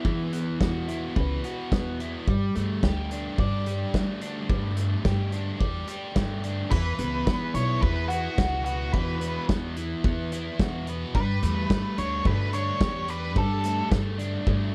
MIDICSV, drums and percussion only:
0, 0, Header, 1, 2, 480
1, 0, Start_track
1, 0, Tempo, 554529
1, 42, Time_signature, 4, 2, 24, 8
1, 12767, End_track
2, 0, Start_track
2, 0, Title_t, "Drums"
2, 42, Note_on_c, 9, 36, 101
2, 129, Note_off_c, 9, 36, 0
2, 285, Note_on_c, 9, 42, 80
2, 371, Note_off_c, 9, 42, 0
2, 525, Note_on_c, 9, 36, 102
2, 530, Note_on_c, 9, 38, 97
2, 611, Note_off_c, 9, 36, 0
2, 617, Note_off_c, 9, 38, 0
2, 767, Note_on_c, 9, 42, 79
2, 854, Note_off_c, 9, 42, 0
2, 1006, Note_on_c, 9, 36, 102
2, 1093, Note_off_c, 9, 36, 0
2, 1246, Note_on_c, 9, 42, 69
2, 1333, Note_off_c, 9, 42, 0
2, 1488, Note_on_c, 9, 36, 106
2, 1494, Note_on_c, 9, 38, 102
2, 1574, Note_off_c, 9, 36, 0
2, 1581, Note_off_c, 9, 38, 0
2, 1732, Note_on_c, 9, 42, 70
2, 1818, Note_off_c, 9, 42, 0
2, 1970, Note_on_c, 9, 36, 100
2, 2056, Note_off_c, 9, 36, 0
2, 2212, Note_on_c, 9, 42, 71
2, 2299, Note_off_c, 9, 42, 0
2, 2449, Note_on_c, 9, 36, 101
2, 2455, Note_on_c, 9, 38, 106
2, 2536, Note_off_c, 9, 36, 0
2, 2542, Note_off_c, 9, 38, 0
2, 2692, Note_on_c, 9, 42, 83
2, 2779, Note_off_c, 9, 42, 0
2, 2929, Note_on_c, 9, 36, 104
2, 3016, Note_off_c, 9, 36, 0
2, 3171, Note_on_c, 9, 42, 78
2, 3257, Note_off_c, 9, 42, 0
2, 3411, Note_on_c, 9, 36, 98
2, 3418, Note_on_c, 9, 38, 106
2, 3498, Note_off_c, 9, 36, 0
2, 3505, Note_off_c, 9, 38, 0
2, 3649, Note_on_c, 9, 42, 85
2, 3736, Note_off_c, 9, 42, 0
2, 3891, Note_on_c, 9, 36, 107
2, 3977, Note_off_c, 9, 36, 0
2, 4128, Note_on_c, 9, 42, 88
2, 4214, Note_off_c, 9, 42, 0
2, 4371, Note_on_c, 9, 36, 100
2, 4372, Note_on_c, 9, 38, 111
2, 4457, Note_off_c, 9, 36, 0
2, 4458, Note_off_c, 9, 38, 0
2, 4607, Note_on_c, 9, 42, 78
2, 4694, Note_off_c, 9, 42, 0
2, 4852, Note_on_c, 9, 36, 98
2, 4938, Note_off_c, 9, 36, 0
2, 5086, Note_on_c, 9, 42, 80
2, 5173, Note_off_c, 9, 42, 0
2, 5331, Note_on_c, 9, 36, 105
2, 5332, Note_on_c, 9, 38, 110
2, 5418, Note_off_c, 9, 36, 0
2, 5419, Note_off_c, 9, 38, 0
2, 5572, Note_on_c, 9, 42, 74
2, 5659, Note_off_c, 9, 42, 0
2, 5809, Note_on_c, 9, 49, 92
2, 5813, Note_on_c, 9, 36, 110
2, 5895, Note_off_c, 9, 49, 0
2, 5899, Note_off_c, 9, 36, 0
2, 6048, Note_on_c, 9, 42, 93
2, 6135, Note_off_c, 9, 42, 0
2, 6293, Note_on_c, 9, 36, 100
2, 6294, Note_on_c, 9, 38, 107
2, 6379, Note_off_c, 9, 36, 0
2, 6381, Note_off_c, 9, 38, 0
2, 6532, Note_on_c, 9, 42, 92
2, 6619, Note_off_c, 9, 42, 0
2, 6774, Note_on_c, 9, 36, 102
2, 6860, Note_off_c, 9, 36, 0
2, 7012, Note_on_c, 9, 42, 92
2, 7099, Note_off_c, 9, 42, 0
2, 7254, Note_on_c, 9, 36, 113
2, 7256, Note_on_c, 9, 38, 113
2, 7341, Note_off_c, 9, 36, 0
2, 7343, Note_off_c, 9, 38, 0
2, 7495, Note_on_c, 9, 42, 94
2, 7582, Note_off_c, 9, 42, 0
2, 7735, Note_on_c, 9, 36, 106
2, 7822, Note_off_c, 9, 36, 0
2, 7974, Note_on_c, 9, 42, 93
2, 8061, Note_off_c, 9, 42, 0
2, 8215, Note_on_c, 9, 36, 100
2, 8219, Note_on_c, 9, 38, 108
2, 8302, Note_off_c, 9, 36, 0
2, 8306, Note_off_c, 9, 38, 0
2, 8454, Note_on_c, 9, 42, 89
2, 8541, Note_off_c, 9, 42, 0
2, 8693, Note_on_c, 9, 36, 100
2, 8780, Note_off_c, 9, 36, 0
2, 8933, Note_on_c, 9, 42, 89
2, 9020, Note_off_c, 9, 42, 0
2, 9171, Note_on_c, 9, 36, 105
2, 9175, Note_on_c, 9, 38, 105
2, 9258, Note_off_c, 9, 36, 0
2, 9261, Note_off_c, 9, 38, 0
2, 9411, Note_on_c, 9, 42, 91
2, 9497, Note_off_c, 9, 42, 0
2, 9649, Note_on_c, 9, 36, 104
2, 9736, Note_off_c, 9, 36, 0
2, 9892, Note_on_c, 9, 42, 81
2, 9978, Note_off_c, 9, 42, 0
2, 10128, Note_on_c, 9, 36, 102
2, 10133, Note_on_c, 9, 38, 108
2, 10215, Note_off_c, 9, 36, 0
2, 10220, Note_off_c, 9, 38, 0
2, 10370, Note_on_c, 9, 42, 92
2, 10457, Note_off_c, 9, 42, 0
2, 10606, Note_on_c, 9, 36, 103
2, 10693, Note_off_c, 9, 36, 0
2, 10847, Note_on_c, 9, 42, 86
2, 10934, Note_off_c, 9, 42, 0
2, 11085, Note_on_c, 9, 36, 111
2, 11089, Note_on_c, 9, 38, 115
2, 11172, Note_off_c, 9, 36, 0
2, 11176, Note_off_c, 9, 38, 0
2, 11326, Note_on_c, 9, 42, 95
2, 11412, Note_off_c, 9, 42, 0
2, 11565, Note_on_c, 9, 36, 109
2, 11651, Note_off_c, 9, 36, 0
2, 11805, Note_on_c, 9, 42, 101
2, 11892, Note_off_c, 9, 42, 0
2, 12045, Note_on_c, 9, 36, 107
2, 12049, Note_on_c, 9, 38, 108
2, 12132, Note_off_c, 9, 36, 0
2, 12136, Note_off_c, 9, 38, 0
2, 12286, Note_on_c, 9, 42, 89
2, 12373, Note_off_c, 9, 42, 0
2, 12524, Note_on_c, 9, 36, 100
2, 12610, Note_off_c, 9, 36, 0
2, 12767, End_track
0, 0, End_of_file